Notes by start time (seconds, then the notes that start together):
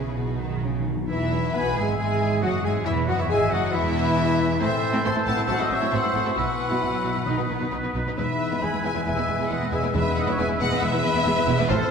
Already playing: B1 B2 C#3 B3 E4 G#4 B4
0.17 B2 D#4 F#4
0.25 B2
0.33 B2
0.40 B2 D#3 B3
0.49 B2
0.57 B2
0.63 B2 C#3 D#4
0.72 B2
0.80 B2
0.86 B2 B3
0.95 B2
1.08 E1 E2 E3 E4 B4 E5
1.31 E4
1.53 B1 B2 B3 B4 G#5 B5
1.75 G#1 G#2 G#3 G#4 E5 G#5
1.97 G#1 G#2 G#3 B3 G#4 E5 G#5
2.21 E4
2.42 F#1 F#2 F#3 F#4 B4 D#5 F#5
2.64 G#1 G#2 G#3 G#4 E5 G#5
2.85 E1 E2 E3 E4 B4 E5
3.06 F#1 F#2 F#3 E4 F#4 D#5 F#5
3.16 E2 E3 E4 C#5 E5
3.27 G#1 G#2 G#3 G#4 B4 E5 G#5
3.50 F#1 F#2 F#3 F#4 G#4 D#5 F#5
3.71 E1 E2 E3 B3 E4 B4 E5
3.95 E4
4.17 B4
4.39 G#4
4.59 A1 A2 E3 A3 C4 E4 A4 C5 E5 E6
4.82 C4
4.93 A2 A3 C4 E4 A4
5.04 A1 A2 E3 A3 C4 E4 A4 A5 C6
5.15 A2 A3 C4 E4 A4
5.25 A1 A2 A3 C4 E4 A4 F#5 A5
5.37 A2 A3 C4 E4 A4
5.47 A1 A2 E3 F#3 C4 E4 F#4 A4 F#5 A5
5.58 A2 F#3 C4 E4 A4 D#5 F#5
5.70 A1 A2 F#3 C4 E4 A4 C#5 E5
5.80 A2 F#3 C4 E4 A4
5.91 A1 A2 E3 F#3 C4 E4 F#4 A4 C5 F#5
6.02 A2 F#3 C4 E4 A4
6.14 A1 A2 F#3 C4 E4 A4
6.25 A2 F#3 C4 E4 A4
6.36 B1 B2 F#3 B3 E4 F#4 B4 F#5
6.60 B3
6.70 B2 F#3 B3 E4 F#4
6.81 B1 B2 F#3 E4 F#4
6.92 B2 E4 F#4
7.03 B1 B2 E4 F#4
7.14 B2 E4 F#4
7.25 B1 B2 D#3 B3 D#4 B4 D#6
7.37 B2 D#4 B4
7.49 B1 B2 B3 D#4 B4
7.60 B2 D#4 B4
7.71 B1 B2 B3 D#4 F#4 B4
7.83 B2 D#4 B4
7.95 B1 B2 D#4 B4
8.07 B2 D#4 B4
8.17 E1 E2 E3 G#3 B3 E4 G#4 B4 E5 E6
8.39 E4
8.51 E2 G#3 B3 E4 B4
8.62 E1 E2 G#3 B3 E4 B4 G#5 B5
8.73 E2 G#3 B3 E4 B4
8.84 E1 E2 G#3 B3 E4 G#4 B4 E5 G#5
8.94 E2 G#3 B3 E4 B4
9.05 E1 E2 G#3 B3 E4 B4 E5 G#5
9.16 E2 G#3 B3 E4 B4
9.27 E1 E2 G#3 B3 E4 B4
9.37 E2 G#3 B3 E4 B4
9.49 E1 E2 G#3 B3 E4 B4 D#5 F#5
9.59 E2 G#3 B3 E4 B4
9.71 E1 E2 G#3 B3 E4 G#4 B4 E5 G#5
9.81 E2 G#3 B3 E4 B4
9.93 E1 E2 E3 G#3 B3 E4 B4 E5
10.16 E4 D#5 F#5
10.25 E2 G#3 B3 E4 B4 C#5 E5
10.37 E1 E2 G#3 B3 E4 B4 E5 G#5
10.48 E2 G#3 B3 E4 B4
10.59 E1 E2 G#3 B3 E4 G#4 B4 D#5 F#5
10.70 E2 G#3 B3 E4 B4
10.81 E1 E2 G#3 B3 E4 B4 E5
10.92 E2 G#3 B3 E4 B4
11.02 E1 E2 G#3 B3 E4 B4
11.14 E2 G#3 B3 E4 B4
11.24 E1 E2 G#3 B3 E4 B4
11.35 E2 G#3 B3 E4 B4
11.46 E1 E2 G#3 B3 E4 G#4 B4
11.57 E2 G#3 B3 E4 B4
11.68 A1 A2 F3 C4 F4 A4 C5 F6